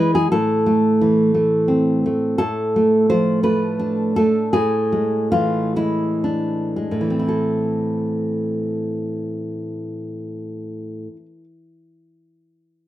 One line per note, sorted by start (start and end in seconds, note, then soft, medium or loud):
0.00 0.26 E3 medium
0.00 0.26 G#3 soft
0.00 0.26 E4 soft
0.00 0.12 B4 medium
0.15 0.31 G#4 medium
0.32 2.35 A2 medium
0.32 1.99 A4 medium
0.66 1.33 A3 soft
1.01 2.03 E3 soft
1.34 2.04 A3 soft
1.68 2.38 C4 soft
2.06 2.39 A3 soft
2.38 4.50 A2 medium
2.38 3.07 A4 medium
2.76 3.42 A3 soft
3.10 4.17 F3 soft
3.10 3.43 C5 medium
3.43 4.16 A3 soft
3.43 4.13 B4 medium
3.79 4.53 D4 soft
4.16 4.54 A3 soft
4.16 4.52 A4 medium
4.53 6.90 A2 medium
4.53 5.29 G#4 medium
4.92 5.75 G#3 soft
5.32 6.77 E3 soft
5.32 5.74 F4 medium
5.76 6.75 G#3 soft
5.76 7.18 E4 medium
6.24 7.28 D4 soft
6.76 7.10 G#3 soft
6.91 11.06 A2 soft
7.01 11.16 E3 soft
7.10 11.25 C4 soft
7.19 11.35 E4 soft
7.28 11.44 A4 soft